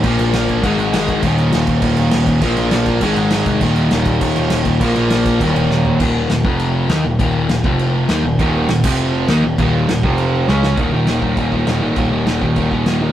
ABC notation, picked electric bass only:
X:1
M:4/4
L:1/8
Q:1/4=201
K:Fdor
V:1 name="Picked electric bass" clef=bass
B,,, B,,, B,,,2 A,,, A,,, A,,, A,,, | E,,,2 E,,,2 E,,, E,,, E,,, E,,, | B,,, B,,, B,,,2 A,,, A,,, A,,, F,,, | E,,,2 E,,,2 E,,, E,,, E,,, E,,, |
B,,, B,,, B,,,2 E,,, E,,, E,,, E,,, | E,,,2 E,,, F,,,3 E,, E,,, | E,,,2 E,,, F,,,3 E,, E,,, | E,,,2 E,,, F,,,3 E,, E,,, |
E,,,2 E,,, F,,,3 _D,,2 | E,,, E,,, E,,, E,,, E,,,2 E,,, A,,, | E,,, E,,, E,,, E,,, E,,, E,,, E,,,2 |]